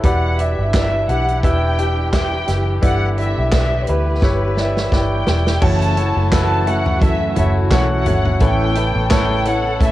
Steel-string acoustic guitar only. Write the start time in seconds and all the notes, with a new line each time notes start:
5.61 F#2 E3 F#3 A3 C#4 F#4
5.96 E3 A3 C#4 F#4
6.30 E3 A3 C#4 F#4
6.65 E3 A3 C#4 F#4
6.99 F#2 E3 F#3 A3 C#4 F#4
7.35 E3 A3 C#4 F#4
7.70 E3 A3 C#4 F#4
8.04 E3 A3 C#4 F#4
8.39 A3 C#4 E4 B4
8.75 C#4 E4 B4
9.10 A3 C#4 E4
9.44 C#4 E4 B4
9.80 A3 C#4 E4 B4